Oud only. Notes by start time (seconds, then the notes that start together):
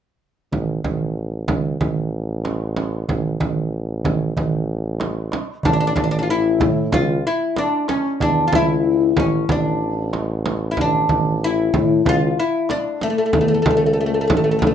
5.65 D4
5.73 D4
5.80 D4
5.87 D4
5.96 D4
6.04 D4
6.11 D4
6.19 D4 F4
6.30 E4
6.94 F4
7.27 E4
7.58 D4
7.89 C#4
8.22 D4
8.48 F4
8.55 E4
9.20 C#4
9.52 D4
10.71 E4
10.81 D4
11.44 E4
12.09 F4
12.40 E4
12.71 D4
13.03 A3
13.10 A3
13.18 A3
13.26 A3
13.33 A3
13.41 A3
13.48 A3
13.54 A3
13.62 A3
13.71 A3
13.77 A3
13.86 A3
13.93 A3
14.01 A3
14.06 A3
14.14 A3
14.21 A3
14.28 A3
14.37 A3
14.44 A3
14.51 A3
14.59 A3
14.67 A3